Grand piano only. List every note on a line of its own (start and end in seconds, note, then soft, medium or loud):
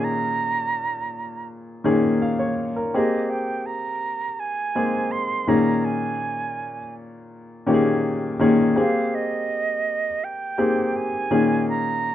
0.00 0.96 A#2 medium
0.00 0.96 D#3 medium
0.00 0.96 A#3 medium
0.00 0.96 C#4 medium
0.00 1.00 G#4 medium
1.84 2.49 A#2 medium
1.84 2.49 D#3 medium
1.84 2.50 A#3 medium
1.84 2.50 C#4 medium
1.84 2.50 G#4 medium
2.22 2.39 F5 medium
2.39 2.74 C#5 medium
2.76 3.11 A#4 medium
2.94 4.24 A#3 medium
2.94 4.24 C4 medium
2.94 4.24 G4 medium
2.94 4.25 G#4 medium
4.75 5.41 G#3 medium
4.75 5.41 A#3 medium
4.75 5.41 C4 medium
4.75 5.41 G#4 medium
5.47 6.78 A#2 medium
5.47 6.78 D#3 medium
5.47 6.78 A#3 medium
5.47 6.78 C#4 medium
5.47 6.79 G#4 medium
7.66 8.32 A#2 medium
7.66 8.32 D#3 medium
7.66 8.32 A#3 medium
7.66 8.32 C#4 medium
7.66 7.74 G4 medium
7.74 8.36 G#4 medium
8.39 8.72 A#2 medium
8.39 8.72 D#3 medium
8.39 8.73 A#3 medium
8.39 8.73 C#4 medium
8.39 8.73 G#4 medium
8.76 10.06 A#3 medium
8.76 10.07 C4 medium
8.76 10.06 G4 medium
8.76 10.07 G#4 medium
10.58 11.23 A#3 medium
10.58 11.24 C4 medium
10.58 11.23 G4 medium
10.58 11.24 G#4 medium
11.31 12.15 A#2 medium
11.31 12.15 D#3 medium
11.31 12.15 A#3 medium
11.31 12.15 C#4 medium
11.31 12.15 G#4 medium